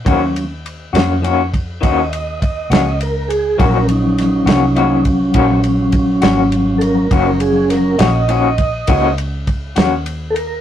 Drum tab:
RD |xxxxxxxxxxxx|xxxxxxxxxxxx|xxxxxxxxxxxx|
SD |---o-----o--|--oo-----o--|--oo-----o--|
BD |o----oo-o---|o----oo-o---|o----oo-o---|